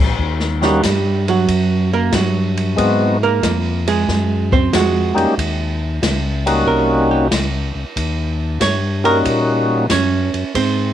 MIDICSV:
0, 0, Header, 1, 5, 480
1, 0, Start_track
1, 0, Tempo, 646552
1, 145, Time_signature, 4, 2, 24, 8
1, 8116, End_track
2, 0, Start_track
2, 0, Title_t, "Hollow-body jazz guitar"
2, 0, Program_c, 0, 26
2, 473, Note_on_c, 0, 55, 66
2, 478, Note_on_c, 0, 67, 70
2, 925, Note_off_c, 0, 55, 0
2, 925, Note_off_c, 0, 67, 0
2, 956, Note_on_c, 0, 54, 67
2, 959, Note_on_c, 0, 66, 79
2, 1406, Note_off_c, 0, 54, 0
2, 1406, Note_off_c, 0, 66, 0
2, 1436, Note_on_c, 0, 58, 83
2, 1440, Note_on_c, 0, 70, 82
2, 1584, Note_off_c, 0, 58, 0
2, 1584, Note_off_c, 0, 70, 0
2, 1595, Note_on_c, 0, 66, 55
2, 1604, Note_on_c, 0, 54, 43
2, 2370, Note_off_c, 0, 66, 0
2, 2374, Note_off_c, 0, 54, 0
2, 2398, Note_on_c, 0, 70, 105
2, 2403, Note_on_c, 0, 58, 80
2, 2848, Note_off_c, 0, 70, 0
2, 2850, Note_off_c, 0, 58, 0
2, 2877, Note_on_c, 0, 56, 80
2, 2882, Note_on_c, 0, 68, 75
2, 3328, Note_off_c, 0, 56, 0
2, 3329, Note_off_c, 0, 68, 0
2, 3360, Note_on_c, 0, 72, 90
2, 3363, Note_on_c, 0, 60, 71
2, 3507, Note_off_c, 0, 72, 0
2, 3508, Note_off_c, 0, 60, 0
2, 3523, Note_on_c, 0, 56, 63
2, 3528, Note_on_c, 0, 66, 80
2, 4295, Note_off_c, 0, 56, 0
2, 4295, Note_off_c, 0, 66, 0
2, 4957, Note_on_c, 0, 70, 75
2, 5271, Note_off_c, 0, 70, 0
2, 5279, Note_on_c, 0, 67, 62
2, 5426, Note_off_c, 0, 67, 0
2, 6398, Note_on_c, 0, 73, 95
2, 6711, Note_off_c, 0, 73, 0
2, 6719, Note_on_c, 0, 70, 102
2, 6810, Note_off_c, 0, 70, 0
2, 7360, Note_on_c, 0, 61, 60
2, 7362, Note_on_c, 0, 73, 65
2, 7803, Note_off_c, 0, 73, 0
2, 7804, Note_off_c, 0, 61, 0
2, 7835, Note_on_c, 0, 72, 78
2, 7838, Note_on_c, 0, 60, 63
2, 8116, Note_off_c, 0, 60, 0
2, 8116, Note_off_c, 0, 72, 0
2, 8116, End_track
3, 0, Start_track
3, 0, Title_t, "Tonewheel organ"
3, 0, Program_c, 1, 16
3, 457, Note_on_c, 1, 55, 58
3, 462, Note_on_c, 1, 61, 56
3, 464, Note_on_c, 1, 58, 50
3, 466, Note_on_c, 1, 63, 51
3, 472, Note_on_c, 1, 66, 66
3, 603, Note_off_c, 1, 55, 0
3, 605, Note_off_c, 1, 61, 0
3, 606, Note_off_c, 1, 58, 0
3, 607, Note_off_c, 1, 63, 0
3, 610, Note_off_c, 1, 66, 0
3, 2052, Note_on_c, 1, 56, 70
3, 2057, Note_on_c, 1, 59, 62
3, 2061, Note_on_c, 1, 63, 64
3, 2062, Note_on_c, 1, 60, 58
3, 2072, Note_on_c, 1, 66, 72
3, 2355, Note_off_c, 1, 56, 0
3, 2357, Note_off_c, 1, 59, 0
3, 2359, Note_off_c, 1, 63, 0
3, 2360, Note_off_c, 1, 60, 0
3, 2365, Note_off_c, 1, 66, 0
3, 3819, Note_on_c, 1, 55, 69
3, 3823, Note_on_c, 1, 58, 68
3, 3828, Note_on_c, 1, 63, 61
3, 3833, Note_on_c, 1, 61, 62
3, 3834, Note_on_c, 1, 67, 77
3, 3965, Note_off_c, 1, 55, 0
3, 3967, Note_off_c, 1, 58, 0
3, 3970, Note_off_c, 1, 63, 0
3, 3972, Note_off_c, 1, 61, 0
3, 3973, Note_off_c, 1, 67, 0
3, 4799, Note_on_c, 1, 55, 73
3, 4802, Note_on_c, 1, 61, 66
3, 4803, Note_on_c, 1, 58, 66
3, 4803, Note_on_c, 1, 63, 63
3, 4810, Note_on_c, 1, 66, 78
3, 5400, Note_off_c, 1, 55, 0
3, 5402, Note_off_c, 1, 61, 0
3, 5402, Note_off_c, 1, 63, 0
3, 5403, Note_off_c, 1, 58, 0
3, 5406, Note_off_c, 1, 66, 0
3, 6713, Note_on_c, 1, 55, 73
3, 6721, Note_on_c, 1, 58, 61
3, 6722, Note_on_c, 1, 61, 64
3, 6725, Note_on_c, 1, 63, 68
3, 6728, Note_on_c, 1, 66, 77
3, 7316, Note_off_c, 1, 55, 0
3, 7320, Note_off_c, 1, 58, 0
3, 7321, Note_off_c, 1, 61, 0
3, 7322, Note_off_c, 1, 63, 0
3, 7324, Note_off_c, 1, 66, 0
3, 8116, End_track
4, 0, Start_track
4, 0, Title_t, "Tonewheel organ"
4, 0, Program_c, 2, 16
4, 0, Note_on_c, 2, 34, 85
4, 116, Note_off_c, 2, 34, 0
4, 137, Note_on_c, 2, 39, 83
4, 607, Note_off_c, 2, 39, 0
4, 620, Note_on_c, 2, 43, 84
4, 1089, Note_off_c, 2, 43, 0
4, 1098, Note_on_c, 2, 42, 78
4, 1568, Note_off_c, 2, 42, 0
4, 1582, Note_on_c, 2, 43, 81
4, 2051, Note_off_c, 2, 43, 0
4, 2061, Note_on_c, 2, 44, 81
4, 2531, Note_off_c, 2, 44, 0
4, 2542, Note_on_c, 2, 41, 89
4, 3011, Note_off_c, 2, 41, 0
4, 3025, Note_on_c, 2, 42, 82
4, 3493, Note_off_c, 2, 42, 0
4, 3505, Note_on_c, 2, 41, 89
4, 3812, Note_off_c, 2, 41, 0
4, 3831, Note_on_c, 2, 41, 36
4, 3909, Note_off_c, 2, 41, 0
4, 3992, Note_on_c, 2, 39, 76
4, 4457, Note_off_c, 2, 39, 0
4, 4471, Note_on_c, 2, 37, 92
4, 4936, Note_off_c, 2, 37, 0
4, 4950, Note_on_c, 2, 36, 85
4, 5415, Note_off_c, 2, 36, 0
4, 5431, Note_on_c, 2, 37, 81
4, 5735, Note_off_c, 2, 37, 0
4, 5751, Note_on_c, 2, 37, 36
4, 5829, Note_off_c, 2, 37, 0
4, 5911, Note_on_c, 2, 39, 81
4, 6376, Note_off_c, 2, 39, 0
4, 6389, Note_on_c, 2, 43, 80
4, 6854, Note_off_c, 2, 43, 0
4, 6866, Note_on_c, 2, 46, 79
4, 7332, Note_off_c, 2, 46, 0
4, 7348, Note_on_c, 2, 42, 87
4, 7652, Note_off_c, 2, 42, 0
4, 7675, Note_on_c, 2, 42, 36
4, 7751, Note_off_c, 2, 42, 0
4, 7827, Note_on_c, 2, 44, 74
4, 8116, Note_off_c, 2, 44, 0
4, 8116, End_track
5, 0, Start_track
5, 0, Title_t, "Drums"
5, 140, Note_on_c, 9, 36, 25
5, 214, Note_off_c, 9, 36, 0
5, 294, Note_on_c, 9, 38, 30
5, 369, Note_off_c, 9, 38, 0
5, 459, Note_on_c, 9, 38, 44
5, 533, Note_off_c, 9, 38, 0
5, 617, Note_on_c, 9, 38, 60
5, 618, Note_on_c, 9, 44, 50
5, 618, Note_on_c, 9, 51, 59
5, 620, Note_on_c, 9, 36, 19
5, 691, Note_off_c, 9, 38, 0
5, 692, Note_off_c, 9, 44, 0
5, 692, Note_off_c, 9, 51, 0
5, 695, Note_off_c, 9, 36, 0
5, 950, Note_on_c, 9, 51, 41
5, 1025, Note_off_c, 9, 51, 0
5, 1100, Note_on_c, 9, 36, 17
5, 1102, Note_on_c, 9, 51, 50
5, 1174, Note_off_c, 9, 36, 0
5, 1176, Note_off_c, 9, 51, 0
5, 1576, Note_on_c, 9, 38, 59
5, 1578, Note_on_c, 9, 44, 61
5, 1578, Note_on_c, 9, 51, 61
5, 1581, Note_on_c, 9, 36, 26
5, 1650, Note_off_c, 9, 38, 0
5, 1652, Note_off_c, 9, 44, 0
5, 1652, Note_off_c, 9, 51, 0
5, 1655, Note_off_c, 9, 36, 0
5, 1911, Note_on_c, 9, 51, 43
5, 1985, Note_off_c, 9, 51, 0
5, 2063, Note_on_c, 9, 36, 20
5, 2065, Note_on_c, 9, 51, 56
5, 2137, Note_off_c, 9, 36, 0
5, 2139, Note_off_c, 9, 51, 0
5, 2545, Note_on_c, 9, 36, 22
5, 2545, Note_on_c, 9, 38, 60
5, 2547, Note_on_c, 9, 44, 54
5, 2547, Note_on_c, 9, 51, 61
5, 2619, Note_off_c, 9, 38, 0
5, 2620, Note_off_c, 9, 36, 0
5, 2621, Note_off_c, 9, 44, 0
5, 2621, Note_off_c, 9, 51, 0
5, 2875, Note_on_c, 9, 51, 59
5, 2949, Note_off_c, 9, 51, 0
5, 3027, Note_on_c, 9, 36, 21
5, 3029, Note_on_c, 9, 38, 37
5, 3101, Note_off_c, 9, 36, 0
5, 3104, Note_off_c, 9, 38, 0
5, 3357, Note_on_c, 9, 36, 56
5, 3431, Note_off_c, 9, 36, 0
5, 3509, Note_on_c, 9, 36, 20
5, 3511, Note_on_c, 9, 38, 71
5, 3513, Note_on_c, 9, 44, 67
5, 3513, Note_on_c, 9, 51, 62
5, 3584, Note_off_c, 9, 36, 0
5, 3585, Note_off_c, 9, 38, 0
5, 3587, Note_off_c, 9, 44, 0
5, 3587, Note_off_c, 9, 51, 0
5, 3843, Note_on_c, 9, 51, 41
5, 3917, Note_off_c, 9, 51, 0
5, 3992, Note_on_c, 9, 36, 20
5, 4000, Note_on_c, 9, 51, 59
5, 4067, Note_off_c, 9, 36, 0
5, 4074, Note_off_c, 9, 51, 0
5, 4472, Note_on_c, 9, 36, 20
5, 4474, Note_on_c, 9, 38, 64
5, 4475, Note_on_c, 9, 44, 54
5, 4475, Note_on_c, 9, 51, 62
5, 4547, Note_off_c, 9, 36, 0
5, 4548, Note_off_c, 9, 38, 0
5, 4550, Note_off_c, 9, 44, 0
5, 4550, Note_off_c, 9, 51, 0
5, 4803, Note_on_c, 9, 51, 60
5, 4877, Note_off_c, 9, 51, 0
5, 4951, Note_on_c, 9, 36, 17
5, 5025, Note_off_c, 9, 36, 0
5, 5430, Note_on_c, 9, 38, 66
5, 5431, Note_on_c, 9, 36, 21
5, 5431, Note_on_c, 9, 44, 46
5, 5431, Note_on_c, 9, 51, 65
5, 5504, Note_off_c, 9, 38, 0
5, 5505, Note_off_c, 9, 36, 0
5, 5506, Note_off_c, 9, 44, 0
5, 5506, Note_off_c, 9, 51, 0
5, 5911, Note_on_c, 9, 36, 23
5, 5915, Note_on_c, 9, 51, 56
5, 5985, Note_off_c, 9, 36, 0
5, 5989, Note_off_c, 9, 51, 0
5, 6388, Note_on_c, 9, 38, 59
5, 6389, Note_on_c, 9, 36, 17
5, 6389, Note_on_c, 9, 44, 55
5, 6389, Note_on_c, 9, 51, 61
5, 6462, Note_off_c, 9, 38, 0
5, 6464, Note_off_c, 9, 36, 0
5, 6464, Note_off_c, 9, 44, 0
5, 6464, Note_off_c, 9, 51, 0
5, 6718, Note_on_c, 9, 51, 40
5, 6793, Note_off_c, 9, 51, 0
5, 6868, Note_on_c, 9, 36, 19
5, 6869, Note_on_c, 9, 51, 56
5, 6942, Note_off_c, 9, 36, 0
5, 6944, Note_off_c, 9, 51, 0
5, 7346, Note_on_c, 9, 38, 60
5, 7347, Note_on_c, 9, 36, 19
5, 7348, Note_on_c, 9, 44, 57
5, 7348, Note_on_c, 9, 51, 65
5, 7420, Note_off_c, 9, 38, 0
5, 7422, Note_off_c, 9, 36, 0
5, 7422, Note_off_c, 9, 44, 0
5, 7422, Note_off_c, 9, 51, 0
5, 7675, Note_on_c, 9, 51, 42
5, 7749, Note_off_c, 9, 51, 0
5, 7827, Note_on_c, 9, 36, 19
5, 7831, Note_on_c, 9, 51, 64
5, 7902, Note_off_c, 9, 36, 0
5, 7906, Note_off_c, 9, 51, 0
5, 8116, End_track
0, 0, End_of_file